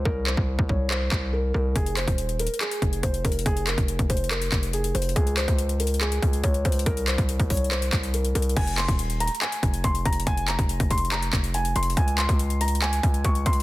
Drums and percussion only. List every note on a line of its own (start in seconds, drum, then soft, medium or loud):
0.05 kick loud
0.27 clap medium
0.37 kick loud
0.59 kick medium
0.69 kick medium
0.91 clap loud
1.12 kick medium
1.12 clap loud
1.76 kick loud
1.76 closed hi-hat medium
1.86 closed hi-hat medium
1.97 clap medium
1.97 closed hi-hat medium
2.08 kick loud
2.08 closed hi-hat medium
2.18 closed hi-hat medium
2.29 closed hi-hat medium
2.39 closed hi-hat medium
2.47 closed hi-hat medium
2.54 closed hi-hat soft
2.61 clap loud
2.61 closed hi-hat medium
2.71 closed hi-hat medium
2.82 kick medium
2.82 closed hi-hat medium
2.93 closed hi-hat medium
3.03 kick medium
3.03 closed hi-hat medium
3.14 closed hi-hat medium
3.25 kick medium
3.25 closed hi-hat medium
3.32 closed hi-hat medium
3.39 closed hi-hat medium
3.46 kick loud
3.46 closed hi-hat medium
3.57 closed hi-hat medium
3.67 clap loud
3.67 closed hi-hat medium
3.78 kick loud
3.78 closed hi-hat medium
3.88 closed hi-hat medium
3.99 kick loud
3.99 closed hi-hat medium
4.10 kick medium
4.10 closed hi-hat medium
4.17 closed hi-hat medium
4.24 closed hi-hat medium
4.31 clap loud
4.31 closed hi-hat medium
4.42 closed hi-hat medium
4.52 kick medium
4.52 clap loud
4.52 closed hi-hat medium
4.63 closed hi-hat medium
4.73 closed hi-hat medium
4.84 closed hi-hat medium
4.95 closed hi-hat medium
5.02 closed hi-hat medium
5.09 closed hi-hat medium
5.16 kick loud
5.16 closed hi-hat medium
5.27 closed hi-hat medium
5.37 clap loud
5.37 closed hi-hat medium
5.48 kick loud
5.48 closed hi-hat medium
5.58 closed hi-hat medium
5.69 closed hi-hat medium
5.80 closed hi-hat medium
5.87 closed hi-hat medium
5.94 closed hi-hat soft
6.01 clap loud
6.01 closed hi-hat medium
6.12 closed hi-hat medium
6.22 kick loud
6.22 closed hi-hat medium
6.33 closed hi-hat medium
6.44 kick loud
6.44 closed hi-hat medium
6.54 closed hi-hat medium
6.65 kick medium
6.65 closed hi-hat medium
6.72 closed hi-hat medium
6.79 closed hi-hat medium
6.86 kick loud
6.86 closed hi-hat medium
6.97 closed hi-hat medium
7.08 clap loud
7.08 closed hi-hat medium
7.18 kick loud
7.18 closed hi-hat medium
7.29 closed hi-hat medium
7.40 kick medium
7.40 closed hi-hat medium
7.50 kick medium
7.50 closed hi-hat medium
7.50 open hi-hat medium
7.57 closed hi-hat medium
7.64 closed hi-hat medium
7.71 clap loud
7.71 closed hi-hat medium
7.82 closed hi-hat medium
7.93 kick medium
7.93 clap loud
7.93 closed hi-hat medium
8.03 closed hi-hat medium
8.14 closed hi-hat medium
8.25 closed hi-hat medium
8.35 closed hi-hat medium
8.42 closed hi-hat medium
8.49 closed hi-hat soft
8.57 kick loud
8.57 closed hi-hat medium
8.57 crash loud
8.67 closed hi-hat medium
8.78 clap loud
8.78 closed hi-hat medium
8.88 kick loud
8.88 closed hi-hat medium
8.99 closed hi-hat medium
9.10 closed hi-hat medium
9.20 closed hi-hat medium
9.28 closed hi-hat medium
9.35 closed hi-hat medium
9.42 clap loud
9.42 closed hi-hat medium
9.52 closed hi-hat medium
9.63 kick medium
9.63 closed hi-hat medium
9.74 closed hi-hat medium
9.84 kick loud
9.84 closed hi-hat medium
9.95 closed hi-hat medium
10.05 kick medium
10.05 closed hi-hat medium
10.13 closed hi-hat medium
10.20 closed hi-hat medium
10.27 kick loud
10.27 closed hi-hat medium
10.37 closed hi-hat medium
10.48 clap loud
10.48 closed hi-hat medium
10.59 kick loud
10.59 closed hi-hat medium
10.69 closed hi-hat medium
10.80 kick loud
10.80 closed hi-hat medium
10.91 kick medium
10.91 closed hi-hat medium
10.98 closed hi-hat medium
11.05 closed hi-hat soft
11.12 clap loud
11.12 closed hi-hat medium
11.22 closed hi-hat medium
11.33 kick loud
11.33 clap loud
11.33 closed hi-hat medium
11.44 closed hi-hat medium
11.54 closed hi-hat medium
11.65 closed hi-hat medium
11.76 closed hi-hat medium
11.83 closed hi-hat medium
11.90 closed hi-hat medium
11.97 kick loud
11.97 closed hi-hat medium
12.08 closed hi-hat medium
12.18 clap loud
12.18 closed hi-hat medium
12.29 kick loud
12.29 closed hi-hat medium
12.39 closed hi-hat medium
12.50 closed hi-hat medium
12.61 closed hi-hat medium
12.68 closed hi-hat medium
12.75 closed hi-hat medium
12.82 clap loud
12.82 closed hi-hat medium
12.93 closed hi-hat medium
13.03 kick loud
13.03 closed hi-hat medium
13.14 closed hi-hat medium
13.24 kick loud
13.24 closed hi-hat medium
13.35 closed hi-hat medium
13.46 kick medium
13.46 closed hi-hat medium
13.53 closed hi-hat medium